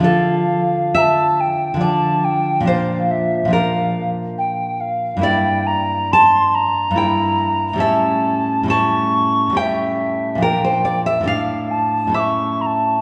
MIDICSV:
0, 0, Header, 1, 3, 480
1, 0, Start_track
1, 0, Key_signature, -1, "minor"
1, 0, Tempo, 913242
1, 22, Time_signature, 3, 2, 24, 8
1, 503, Tempo, 853485
1, 2903, Tempo, 899550
1, 3383, Tempo, 832178
1, 4343, Tempo, 884956
1, 5303, Tempo, 860832
1, 6743, Tempo, 928793
1, 7195, End_track
2, 0, Start_track
2, 0, Title_t, "Recorder"
2, 0, Program_c, 0, 74
2, 25, Note_on_c, 0, 77, 73
2, 512, Note_on_c, 0, 82, 69
2, 520, Note_off_c, 0, 77, 0
2, 535, Note_on_c, 0, 81, 75
2, 541, Note_off_c, 0, 82, 0
2, 755, Note_on_c, 0, 79, 70
2, 764, Note_off_c, 0, 81, 0
2, 995, Note_on_c, 0, 81, 70
2, 1004, Note_off_c, 0, 79, 0
2, 1228, Note_on_c, 0, 79, 72
2, 1236, Note_off_c, 0, 81, 0
2, 1460, Note_off_c, 0, 79, 0
2, 1463, Note_on_c, 0, 77, 74
2, 1713, Note_on_c, 0, 76, 58
2, 1722, Note_off_c, 0, 77, 0
2, 1954, Note_on_c, 0, 77, 71
2, 1963, Note_off_c, 0, 76, 0
2, 2276, Note_off_c, 0, 77, 0
2, 2429, Note_on_c, 0, 79, 59
2, 2668, Note_on_c, 0, 77, 68
2, 2676, Note_off_c, 0, 79, 0
2, 2907, Note_on_c, 0, 79, 78
2, 2915, Note_off_c, 0, 77, 0
2, 3140, Note_on_c, 0, 82, 74
2, 3148, Note_off_c, 0, 79, 0
2, 3382, Note_on_c, 0, 84, 81
2, 3390, Note_off_c, 0, 82, 0
2, 3628, Note_on_c, 0, 82, 82
2, 3636, Note_off_c, 0, 84, 0
2, 4347, Note_on_c, 0, 81, 77
2, 4356, Note_off_c, 0, 82, 0
2, 4833, Note_off_c, 0, 81, 0
2, 4835, Note_on_c, 0, 85, 74
2, 5312, Note_on_c, 0, 77, 61
2, 5320, Note_off_c, 0, 85, 0
2, 5334, Note_on_c, 0, 76, 67
2, 5340, Note_off_c, 0, 77, 0
2, 5789, Note_on_c, 0, 79, 76
2, 5797, Note_off_c, 0, 76, 0
2, 6107, Note_off_c, 0, 79, 0
2, 6267, Note_on_c, 0, 77, 58
2, 6503, Note_on_c, 0, 81, 61
2, 6511, Note_off_c, 0, 77, 0
2, 6749, Note_on_c, 0, 86, 54
2, 6756, Note_off_c, 0, 81, 0
2, 6772, Note_on_c, 0, 85, 59
2, 6778, Note_off_c, 0, 86, 0
2, 6987, Note_on_c, 0, 82, 53
2, 6995, Note_off_c, 0, 85, 0
2, 7013, Note_on_c, 0, 81, 57
2, 7018, Note_off_c, 0, 82, 0
2, 7195, Note_off_c, 0, 81, 0
2, 7195, End_track
3, 0, Start_track
3, 0, Title_t, "Nylon-string guitar"
3, 0, Program_c, 1, 24
3, 0, Note_on_c, 1, 50, 70
3, 1, Note_on_c, 1, 53, 54
3, 15, Note_on_c, 1, 62, 50
3, 22, Note_on_c, 1, 69, 95
3, 483, Note_off_c, 1, 69, 0
3, 497, Note_on_c, 1, 76, 107
3, 936, Note_off_c, 1, 50, 0
3, 943, Note_on_c, 1, 50, 60
3, 949, Note_off_c, 1, 53, 0
3, 956, Note_on_c, 1, 53, 45
3, 958, Note_off_c, 1, 62, 0
3, 962, Note_off_c, 1, 76, 0
3, 971, Note_on_c, 1, 62, 48
3, 981, Note_on_c, 1, 74, 74
3, 1429, Note_off_c, 1, 50, 0
3, 1430, Note_on_c, 1, 46, 67
3, 1436, Note_off_c, 1, 53, 0
3, 1444, Note_off_c, 1, 62, 0
3, 1444, Note_off_c, 1, 74, 0
3, 1444, Note_on_c, 1, 53, 53
3, 1457, Note_on_c, 1, 62, 53
3, 1468, Note_on_c, 1, 72, 91
3, 1899, Note_off_c, 1, 46, 0
3, 1905, Note_on_c, 1, 46, 66
3, 1914, Note_off_c, 1, 53, 0
3, 1920, Note_on_c, 1, 53, 55
3, 1928, Note_off_c, 1, 62, 0
3, 1929, Note_off_c, 1, 72, 0
3, 1935, Note_on_c, 1, 62, 55
3, 1949, Note_on_c, 1, 70, 92
3, 2643, Note_off_c, 1, 70, 0
3, 2861, Note_off_c, 1, 46, 0
3, 2868, Note_off_c, 1, 53, 0
3, 2870, Note_on_c, 1, 43, 61
3, 2875, Note_off_c, 1, 62, 0
3, 2883, Note_on_c, 1, 58, 56
3, 2897, Note_on_c, 1, 64, 54
3, 2907, Note_on_c, 1, 74, 113
3, 3366, Note_off_c, 1, 74, 0
3, 3385, Note_off_c, 1, 64, 0
3, 3387, Note_on_c, 1, 81, 111
3, 3827, Note_off_c, 1, 43, 0
3, 3834, Note_on_c, 1, 43, 61
3, 3836, Note_off_c, 1, 58, 0
3, 3850, Note_on_c, 1, 58, 48
3, 3852, Note_off_c, 1, 81, 0
3, 3863, Note_on_c, 1, 64, 51
3, 3874, Note_on_c, 1, 79, 86
3, 4311, Note_on_c, 1, 45, 62
3, 4312, Note_off_c, 1, 43, 0
3, 4320, Note_off_c, 1, 58, 0
3, 4324, Note_on_c, 1, 55, 53
3, 4327, Note_off_c, 1, 64, 0
3, 4328, Note_off_c, 1, 79, 0
3, 4336, Note_on_c, 1, 61, 57
3, 4350, Note_on_c, 1, 76, 98
3, 4795, Note_off_c, 1, 45, 0
3, 4801, Note_on_c, 1, 45, 65
3, 4807, Note_off_c, 1, 55, 0
3, 4813, Note_off_c, 1, 61, 0
3, 4813, Note_on_c, 1, 55, 51
3, 4814, Note_off_c, 1, 76, 0
3, 4826, Note_on_c, 1, 61, 51
3, 4837, Note_on_c, 1, 81, 102
3, 5263, Note_off_c, 1, 45, 0
3, 5270, Note_on_c, 1, 45, 57
3, 5278, Note_off_c, 1, 55, 0
3, 5285, Note_on_c, 1, 55, 46
3, 5288, Note_off_c, 1, 61, 0
3, 5289, Note_off_c, 1, 81, 0
3, 5296, Note_on_c, 1, 61, 46
3, 5307, Note_on_c, 1, 79, 98
3, 5746, Note_on_c, 1, 46, 58
3, 5751, Note_off_c, 1, 45, 0
3, 5759, Note_off_c, 1, 55, 0
3, 5760, Note_on_c, 1, 53, 49
3, 5765, Note_off_c, 1, 61, 0
3, 5766, Note_off_c, 1, 79, 0
3, 5776, Note_on_c, 1, 62, 48
3, 5786, Note_on_c, 1, 70, 93
3, 5903, Note_off_c, 1, 70, 0
3, 5908, Note_on_c, 1, 72, 77
3, 6020, Note_off_c, 1, 72, 0
3, 6022, Note_on_c, 1, 74, 76
3, 6139, Note_off_c, 1, 74, 0
3, 6141, Note_on_c, 1, 76, 94
3, 6220, Note_off_c, 1, 53, 0
3, 6222, Note_on_c, 1, 45, 57
3, 6224, Note_off_c, 1, 46, 0
3, 6236, Note_on_c, 1, 57, 44
3, 6240, Note_off_c, 1, 62, 0
3, 6248, Note_off_c, 1, 57, 0
3, 6250, Note_on_c, 1, 62, 46
3, 6258, Note_off_c, 1, 76, 0
3, 6260, Note_on_c, 1, 77, 93
3, 6698, Note_off_c, 1, 45, 0
3, 6705, Note_on_c, 1, 45, 49
3, 6715, Note_off_c, 1, 62, 0
3, 6717, Note_on_c, 1, 57, 44
3, 6726, Note_off_c, 1, 77, 0
3, 6727, Note_off_c, 1, 57, 0
3, 6729, Note_on_c, 1, 61, 39
3, 6744, Note_on_c, 1, 76, 74
3, 7190, Note_off_c, 1, 61, 0
3, 7192, Note_off_c, 1, 45, 0
3, 7195, Note_off_c, 1, 76, 0
3, 7195, End_track
0, 0, End_of_file